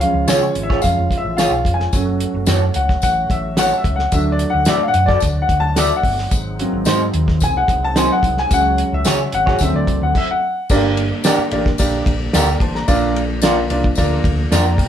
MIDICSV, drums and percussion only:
0, 0, Header, 1, 2, 480
1, 0, Start_track
1, 0, Tempo, 547445
1, 1694, Time_signature, 4, 2, 24, 8
1, 13049, End_track
2, 0, Start_track
2, 0, Title_t, "Drums"
2, 9, Note_on_c, 9, 42, 69
2, 97, Note_off_c, 9, 42, 0
2, 243, Note_on_c, 9, 54, 101
2, 246, Note_on_c, 9, 42, 81
2, 249, Note_on_c, 9, 38, 110
2, 330, Note_off_c, 9, 54, 0
2, 334, Note_off_c, 9, 42, 0
2, 336, Note_off_c, 9, 38, 0
2, 485, Note_on_c, 9, 42, 69
2, 573, Note_off_c, 9, 42, 0
2, 615, Note_on_c, 9, 36, 96
2, 621, Note_on_c, 9, 38, 33
2, 702, Note_off_c, 9, 36, 0
2, 708, Note_off_c, 9, 38, 0
2, 716, Note_on_c, 9, 54, 79
2, 737, Note_on_c, 9, 36, 81
2, 741, Note_on_c, 9, 42, 87
2, 804, Note_off_c, 9, 54, 0
2, 825, Note_off_c, 9, 36, 0
2, 828, Note_off_c, 9, 42, 0
2, 970, Note_on_c, 9, 36, 82
2, 980, Note_on_c, 9, 42, 73
2, 1058, Note_off_c, 9, 36, 0
2, 1068, Note_off_c, 9, 42, 0
2, 1211, Note_on_c, 9, 54, 94
2, 1217, Note_on_c, 9, 38, 85
2, 1219, Note_on_c, 9, 42, 84
2, 1299, Note_off_c, 9, 54, 0
2, 1305, Note_off_c, 9, 38, 0
2, 1306, Note_off_c, 9, 42, 0
2, 1446, Note_on_c, 9, 36, 90
2, 1457, Note_on_c, 9, 42, 78
2, 1534, Note_off_c, 9, 36, 0
2, 1545, Note_off_c, 9, 42, 0
2, 1577, Note_on_c, 9, 38, 35
2, 1665, Note_off_c, 9, 38, 0
2, 1689, Note_on_c, 9, 54, 77
2, 1692, Note_on_c, 9, 36, 103
2, 1693, Note_on_c, 9, 42, 93
2, 1776, Note_off_c, 9, 54, 0
2, 1780, Note_off_c, 9, 36, 0
2, 1781, Note_off_c, 9, 42, 0
2, 1933, Note_on_c, 9, 42, 69
2, 2020, Note_off_c, 9, 42, 0
2, 2161, Note_on_c, 9, 54, 101
2, 2165, Note_on_c, 9, 42, 82
2, 2167, Note_on_c, 9, 38, 104
2, 2248, Note_off_c, 9, 54, 0
2, 2252, Note_off_c, 9, 42, 0
2, 2255, Note_off_c, 9, 38, 0
2, 2404, Note_on_c, 9, 42, 75
2, 2492, Note_off_c, 9, 42, 0
2, 2536, Note_on_c, 9, 36, 86
2, 2536, Note_on_c, 9, 38, 33
2, 2623, Note_off_c, 9, 38, 0
2, 2624, Note_off_c, 9, 36, 0
2, 2646, Note_on_c, 9, 54, 73
2, 2656, Note_on_c, 9, 42, 95
2, 2659, Note_on_c, 9, 36, 85
2, 2734, Note_off_c, 9, 54, 0
2, 2744, Note_off_c, 9, 42, 0
2, 2747, Note_off_c, 9, 36, 0
2, 2892, Note_on_c, 9, 36, 84
2, 2897, Note_on_c, 9, 42, 82
2, 2979, Note_off_c, 9, 36, 0
2, 2984, Note_off_c, 9, 42, 0
2, 3129, Note_on_c, 9, 38, 93
2, 3130, Note_on_c, 9, 42, 85
2, 3134, Note_on_c, 9, 54, 102
2, 3216, Note_off_c, 9, 38, 0
2, 3218, Note_off_c, 9, 42, 0
2, 3222, Note_off_c, 9, 54, 0
2, 3370, Note_on_c, 9, 36, 91
2, 3375, Note_on_c, 9, 42, 78
2, 3458, Note_off_c, 9, 36, 0
2, 3463, Note_off_c, 9, 42, 0
2, 3497, Note_on_c, 9, 38, 33
2, 3585, Note_off_c, 9, 38, 0
2, 3611, Note_on_c, 9, 42, 87
2, 3611, Note_on_c, 9, 54, 79
2, 3616, Note_on_c, 9, 36, 95
2, 3698, Note_off_c, 9, 42, 0
2, 3699, Note_off_c, 9, 54, 0
2, 3704, Note_off_c, 9, 36, 0
2, 3851, Note_on_c, 9, 42, 67
2, 3938, Note_off_c, 9, 42, 0
2, 4079, Note_on_c, 9, 54, 98
2, 4087, Note_on_c, 9, 42, 75
2, 4090, Note_on_c, 9, 38, 99
2, 4167, Note_off_c, 9, 54, 0
2, 4175, Note_off_c, 9, 42, 0
2, 4178, Note_off_c, 9, 38, 0
2, 4330, Note_on_c, 9, 42, 72
2, 4418, Note_off_c, 9, 42, 0
2, 4458, Note_on_c, 9, 38, 34
2, 4459, Note_on_c, 9, 36, 95
2, 4546, Note_off_c, 9, 36, 0
2, 4546, Note_off_c, 9, 38, 0
2, 4563, Note_on_c, 9, 54, 80
2, 4579, Note_on_c, 9, 42, 95
2, 4581, Note_on_c, 9, 36, 90
2, 4650, Note_off_c, 9, 54, 0
2, 4667, Note_off_c, 9, 42, 0
2, 4669, Note_off_c, 9, 36, 0
2, 4814, Note_on_c, 9, 36, 90
2, 4817, Note_on_c, 9, 42, 81
2, 4901, Note_off_c, 9, 36, 0
2, 4905, Note_off_c, 9, 42, 0
2, 5052, Note_on_c, 9, 38, 85
2, 5054, Note_on_c, 9, 42, 90
2, 5055, Note_on_c, 9, 54, 107
2, 5140, Note_off_c, 9, 38, 0
2, 5142, Note_off_c, 9, 42, 0
2, 5143, Note_off_c, 9, 54, 0
2, 5291, Note_on_c, 9, 36, 86
2, 5299, Note_on_c, 9, 46, 59
2, 5379, Note_off_c, 9, 36, 0
2, 5387, Note_off_c, 9, 46, 0
2, 5420, Note_on_c, 9, 38, 34
2, 5507, Note_off_c, 9, 38, 0
2, 5535, Note_on_c, 9, 42, 88
2, 5537, Note_on_c, 9, 36, 102
2, 5537, Note_on_c, 9, 54, 75
2, 5623, Note_off_c, 9, 42, 0
2, 5624, Note_off_c, 9, 54, 0
2, 5625, Note_off_c, 9, 36, 0
2, 5782, Note_on_c, 9, 42, 73
2, 5869, Note_off_c, 9, 42, 0
2, 6008, Note_on_c, 9, 54, 98
2, 6019, Note_on_c, 9, 42, 82
2, 6022, Note_on_c, 9, 38, 103
2, 6095, Note_off_c, 9, 54, 0
2, 6107, Note_off_c, 9, 42, 0
2, 6109, Note_off_c, 9, 38, 0
2, 6257, Note_on_c, 9, 42, 70
2, 6344, Note_off_c, 9, 42, 0
2, 6383, Note_on_c, 9, 36, 96
2, 6385, Note_on_c, 9, 38, 34
2, 6470, Note_off_c, 9, 36, 0
2, 6473, Note_off_c, 9, 38, 0
2, 6492, Note_on_c, 9, 54, 80
2, 6505, Note_on_c, 9, 36, 82
2, 6505, Note_on_c, 9, 42, 93
2, 6580, Note_off_c, 9, 54, 0
2, 6592, Note_off_c, 9, 36, 0
2, 6593, Note_off_c, 9, 42, 0
2, 6736, Note_on_c, 9, 36, 93
2, 6743, Note_on_c, 9, 42, 80
2, 6824, Note_off_c, 9, 36, 0
2, 6831, Note_off_c, 9, 42, 0
2, 6977, Note_on_c, 9, 38, 90
2, 6979, Note_on_c, 9, 42, 82
2, 6985, Note_on_c, 9, 54, 99
2, 7065, Note_off_c, 9, 38, 0
2, 7067, Note_off_c, 9, 42, 0
2, 7073, Note_off_c, 9, 54, 0
2, 7215, Note_on_c, 9, 36, 91
2, 7225, Note_on_c, 9, 42, 78
2, 7303, Note_off_c, 9, 36, 0
2, 7313, Note_off_c, 9, 42, 0
2, 7341, Note_on_c, 9, 38, 35
2, 7429, Note_off_c, 9, 38, 0
2, 7460, Note_on_c, 9, 42, 85
2, 7462, Note_on_c, 9, 36, 103
2, 7463, Note_on_c, 9, 54, 81
2, 7547, Note_off_c, 9, 42, 0
2, 7549, Note_off_c, 9, 36, 0
2, 7550, Note_off_c, 9, 54, 0
2, 7701, Note_on_c, 9, 42, 73
2, 7789, Note_off_c, 9, 42, 0
2, 7931, Note_on_c, 9, 54, 98
2, 7939, Note_on_c, 9, 42, 79
2, 7942, Note_on_c, 9, 38, 108
2, 8019, Note_off_c, 9, 54, 0
2, 8027, Note_off_c, 9, 42, 0
2, 8029, Note_off_c, 9, 38, 0
2, 8176, Note_on_c, 9, 42, 72
2, 8263, Note_off_c, 9, 42, 0
2, 8304, Note_on_c, 9, 36, 99
2, 8310, Note_on_c, 9, 38, 35
2, 8392, Note_off_c, 9, 36, 0
2, 8398, Note_off_c, 9, 38, 0
2, 8405, Note_on_c, 9, 54, 84
2, 8425, Note_on_c, 9, 36, 91
2, 8427, Note_on_c, 9, 42, 99
2, 8493, Note_off_c, 9, 54, 0
2, 8513, Note_off_c, 9, 36, 0
2, 8514, Note_off_c, 9, 42, 0
2, 8658, Note_on_c, 9, 36, 92
2, 8662, Note_on_c, 9, 42, 82
2, 8745, Note_off_c, 9, 36, 0
2, 8750, Note_off_c, 9, 42, 0
2, 8900, Note_on_c, 9, 36, 103
2, 8903, Note_on_c, 9, 49, 87
2, 8988, Note_off_c, 9, 36, 0
2, 8990, Note_off_c, 9, 49, 0
2, 9378, Note_on_c, 9, 54, 74
2, 9380, Note_on_c, 9, 49, 89
2, 9381, Note_on_c, 9, 36, 107
2, 9466, Note_off_c, 9, 54, 0
2, 9468, Note_off_c, 9, 49, 0
2, 9469, Note_off_c, 9, 36, 0
2, 9621, Note_on_c, 9, 51, 60
2, 9708, Note_off_c, 9, 51, 0
2, 9854, Note_on_c, 9, 54, 98
2, 9860, Note_on_c, 9, 51, 73
2, 9862, Note_on_c, 9, 38, 113
2, 9941, Note_off_c, 9, 54, 0
2, 9948, Note_off_c, 9, 51, 0
2, 9950, Note_off_c, 9, 38, 0
2, 10095, Note_on_c, 9, 51, 67
2, 10183, Note_off_c, 9, 51, 0
2, 10223, Note_on_c, 9, 36, 97
2, 10224, Note_on_c, 9, 38, 33
2, 10311, Note_off_c, 9, 36, 0
2, 10312, Note_off_c, 9, 38, 0
2, 10330, Note_on_c, 9, 54, 86
2, 10344, Note_on_c, 9, 36, 87
2, 10345, Note_on_c, 9, 51, 82
2, 10418, Note_off_c, 9, 54, 0
2, 10432, Note_off_c, 9, 36, 0
2, 10433, Note_off_c, 9, 51, 0
2, 10576, Note_on_c, 9, 36, 98
2, 10582, Note_on_c, 9, 51, 66
2, 10663, Note_off_c, 9, 36, 0
2, 10669, Note_off_c, 9, 51, 0
2, 10815, Note_on_c, 9, 38, 92
2, 10817, Note_on_c, 9, 51, 75
2, 10824, Note_on_c, 9, 54, 112
2, 10903, Note_off_c, 9, 38, 0
2, 10905, Note_off_c, 9, 51, 0
2, 10912, Note_off_c, 9, 54, 0
2, 11051, Note_on_c, 9, 36, 100
2, 11058, Note_on_c, 9, 51, 64
2, 11139, Note_off_c, 9, 36, 0
2, 11146, Note_off_c, 9, 51, 0
2, 11181, Note_on_c, 9, 38, 37
2, 11269, Note_off_c, 9, 38, 0
2, 11292, Note_on_c, 9, 54, 83
2, 11297, Note_on_c, 9, 36, 108
2, 11298, Note_on_c, 9, 51, 76
2, 11379, Note_off_c, 9, 54, 0
2, 11385, Note_off_c, 9, 36, 0
2, 11386, Note_off_c, 9, 51, 0
2, 11541, Note_on_c, 9, 51, 61
2, 11629, Note_off_c, 9, 51, 0
2, 11763, Note_on_c, 9, 54, 99
2, 11777, Note_on_c, 9, 51, 72
2, 11779, Note_on_c, 9, 38, 104
2, 11851, Note_off_c, 9, 54, 0
2, 11865, Note_off_c, 9, 51, 0
2, 11867, Note_off_c, 9, 38, 0
2, 12013, Note_on_c, 9, 51, 64
2, 12100, Note_off_c, 9, 51, 0
2, 12137, Note_on_c, 9, 36, 103
2, 12225, Note_off_c, 9, 36, 0
2, 12234, Note_on_c, 9, 54, 80
2, 12258, Note_on_c, 9, 36, 87
2, 12259, Note_on_c, 9, 51, 77
2, 12322, Note_off_c, 9, 54, 0
2, 12346, Note_off_c, 9, 36, 0
2, 12347, Note_off_c, 9, 51, 0
2, 12487, Note_on_c, 9, 36, 99
2, 12493, Note_on_c, 9, 51, 71
2, 12575, Note_off_c, 9, 36, 0
2, 12581, Note_off_c, 9, 51, 0
2, 12731, Note_on_c, 9, 38, 96
2, 12731, Note_on_c, 9, 54, 105
2, 12733, Note_on_c, 9, 51, 72
2, 12819, Note_off_c, 9, 38, 0
2, 12819, Note_off_c, 9, 54, 0
2, 12821, Note_off_c, 9, 51, 0
2, 12961, Note_on_c, 9, 36, 91
2, 12969, Note_on_c, 9, 46, 63
2, 12969, Note_on_c, 9, 51, 70
2, 13049, Note_off_c, 9, 36, 0
2, 13049, Note_off_c, 9, 46, 0
2, 13049, Note_off_c, 9, 51, 0
2, 13049, End_track
0, 0, End_of_file